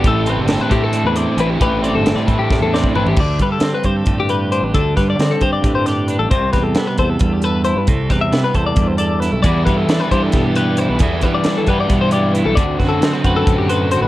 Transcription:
<<
  \new Staff \with { instrumentName = "Clean electric guitar" } { \time 7/8 \key d \mixolydian \tempo 4 = 134 a'8 b'16 a'8 b'16 g'16 a'8 b'16 d''8 b'16 g'16 | b'8 d''16 a'8 d''16 b'16 g'8 a'16 d''8 b'16 g'16 | d''8 b'16 a'8 b'16 c''16 a'8 g'16 b'8 c''16 b'16 | a'8 b'16 d''8 a'16 c''16 d''8 c''16 d''8 b'16 a'16 |
c''8 b'16 a'8 b'16 c''16 a'8 g'16 b'8 c''16 b'16 | a'8 b'16 e''8 b'16 c''16 d''8 c''16 d''8 b'16 a'16 | d''8 b'16 a'8 b'16 c''16 a'8 g'16 b'8 c''16 b'16 | a'8 b'16 d''8 a'16 b'16 d''8 c''16 d''8 b'16 a'16 |
d''8 b'16 a'8 b'16 c''16 a'8 g'16 b'8 c''16 b'16 | }
  \new Staff \with { instrumentName = "Clean electric guitar" } { \time 7/8 \key d \mixolydian << { g'8 c'8 d'8 c'8 d'8 c'8 d'8 | g'8 c'8 d'8 c'8 d'8 c'8 d'8~ | d'4 c'8 g'4 g'8 d'8~ | d'4 c'8 g'4 g'8 d'8 |
r4 b8 a'4 a'8 e'8 | r4 b8 a'4 a'8 e'8 | r4 d'8 g'4 g'8 e'8 | r4 d'8 g'4 g'8 e'8 |
r4 c'8 b'4 c''8 fis'8 | } \\ { a,4. a4. e8 | a,4. a4. e8 | d8 g4. a,4. | d8 g4. a,4. |
c8 g4. g,4. | c8 g4. g,4. | e8 g4. b,4. | e8 g4. b,4. |
d8 fis4. a,4. | } >> }
  \new Staff \with { instrumentName = "Overdriven electric guitar" } { \time 7/8 \key d \mixolydian <a, e a c' e'>8 <a c' e'>8 <a, e a c' e'>8 <a c' e'>4. <e a c' e'>8 | <a, e a c' e'>8 <a c' e'>8 <a, e a c' e'>8 <a c' e'>4. <e a c' e'>8 | r2. r8 | r2. r8 |
r2. r8 | r2. r8 | <e g b e'>4. <e g b e'>2 | <e g b e'>4. <e g b e'>2 |
<d a c' fis'>4. <d a c' fis'>2 | }
  \new Staff \with { instrumentName = "Fingered electric bass" } { \clef bass \time 7/8 \key d \mixolydian a,,8. g,,8 r16 a,8. e,8 r16 a,,8 | a,,8. g,,8 r16 a,8. e,8 r16 a,,8 | d,8 g,8 d16 r16 g,8 g,4~ g,16 a,,16 | d,8 g,8 d16 r16 g,8 g,4~ g,16 a,,16 |
c,8 e,8 c16 r16 e,8 e,4~ e,16 g,16 | c,8 e,8 c16 r16 e,8 e,4~ e,16 b,,16 | e,8 g,8 e16 r16 g,8 g,4~ g,16 b,,16 | e,8 g,8 e16 r16 g,8 g,4~ g,16 b,,16 |
d,8 fis,8 d16 r16 fis,8 fis,4~ fis,16 a,,16 | }
  \new DrumStaff \with { instrumentName = "Drums" } \drummode { \time 7/8 <hh bd>8 hh8 <hh sn>8 <hh bd>8 hh8 hh8 hh8 | <hh bd>8 hh8 <hh sn>8 <hh bd>8 <bd sn>8 sn16 bd16 tomfh16 tomfh16 | <cymc bd>8 <hh bd>8 <hh sn>8 <hh bd>8 <hh bd>8 hh8 hh8 | <hh bd>8 <hh bd sn>8 <hh sn>8 <hh bd>8 <hh bd>8 <hh sn>8 hh8 |
<hh bd>8 <hh bd sn>8 <hh sn>8 <hh bd>8 <hh bd>8 hh8 hh8 | <hh bd>8 <hh bd sn>8 <hh sn>8 <hh bd>8 <hh bd>8 hh8 <hh sn>8 | <hh bd>8 <hh bd>8 <hh sn>8 <hh bd>8 <hh bd sn>8 hh8 hh8 | <hh bd>8 <hh bd>8 <hh sn>8 <hh bd>8 <hh bd>8 hh8 hh8 |
<hh bd>8 <hh bd sn>8 <hh sn>8 <hh bd>8 <hh bd>8 hh8 hh8 | }
>>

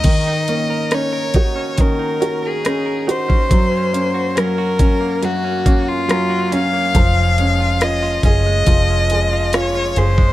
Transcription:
<<
  \new Staff \with { instrumentName = "Violin" } { \time 4/4 \key ees \dorian \tempo 4 = 70 ees''4 des''4 bes'8. aes'8. c''8~ | c''4 bes'4 ges'8. f'8. f''8~ | f''4 ees''8 ees''4. des''8 c''8 | }
  \new Staff \with { instrumentName = "Clean electric guitar" } { \time 4/4 \key ees \dorian ees16 ees'16 des'16 bes'16 ees'16 bes'16 ees'16 des'16 ees16 ees'16 des'16 bes'16 ees'16 bes'16 ees'16 des'16 | ges,16 des'16 bes16 ges'16 des'16 ges'16 des'16 bes16 ges,16 des'16 bes8 des'16 ges'16 des'16 bes16 | f16 des'16 aes16 f'16 des'16 f'16 des'16 aes16 f16 des'16 aes16 f'16 des'16 f'16 des'16 aes16 | }
  \new Staff \with { instrumentName = "Upright piano" } { \time 4/4 \key ees \dorian ees8 bes8 des'8 ges'8 des'8 ges'8 des'8 ges'8 | ges8 des'8 ges8 des'8 ges8 des'8 ges8 des'8 | f8 des'8 f'8 aes'8 f'8 aes'8 f'8 aes'8 | }
  \new Staff \with { instrumentName = "Fingered electric bass" } { \clef bass \time 4/4 \key ees \dorian r1 | r1 | f,,4. ges,,8 f,,4. ges,,8 | }
  \new DrumStaff \with { instrumentName = "Drums" } \drummode { \time 4/4 <cymc hh bd>8 hh8 <hh ss>8 <hh bd>8 <hh bd>8 hh8 <hh ss>8 <hh ss>16 bd16 | <hh bd>8 hh8 <hh ss>8 <hh bd>8 hh8 <hh bd>8 <hh ss>8 <hh ss>8 | <hh bd>8 hh8 <hh ss>8 <hh bd>8 <hh bd>8 hh8 <hh ss>8 <hh ss>16 bd16 | }
>>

